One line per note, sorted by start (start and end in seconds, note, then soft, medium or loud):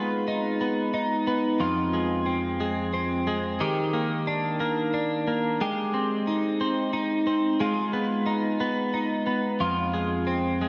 0.00 1.93 G#3 medium
0.00 0.60 B3 soft
0.00 0.27 D#4 soft
0.00 1.60 F4 medium
0.28 0.93 D#4 soft
0.61 1.26 B3 soft
0.94 2.26 D#4 medium
1.27 1.67 B3 soft
1.60 3.61 F2 medium
1.60 3.60 F4 medium
1.93 2.59 G#3 soft
2.26 2.92 C4 soft
2.60 3.26 G#3 soft
2.94 3.68 C4 soft
3.27 3.68 G#3 soft
3.60 5.61 D#3 medium
3.60 5.61 G4 medium
3.93 4.59 A#3 soft
4.27 4.93 D4 soft
4.60 5.26 A#3 soft
4.94 5.67 D4 soft
5.27 5.67 A#3 soft
5.61 7.60 G#3 medium
5.61 7.60 G4 medium
5.94 6.59 C4 soft
6.27 6.93 D#4 soft
6.61 7.26 C4 soft
6.93 8.26 D#4 soft
7.27 7.66 C4 soft
7.60 9.94 G#3 medium
7.60 9.60 F4 medium
7.93 8.59 B3 soft
8.26 8.93 D#4 medium
8.60 9.25 B3 medium
8.94 9.67 D#4 soft
9.27 9.67 B3 soft
9.60 10.69 F2 medium
9.60 10.69 F4 medium
9.94 10.60 G#3 soft
10.27 10.69 C4 soft
10.61 10.69 G#3 soft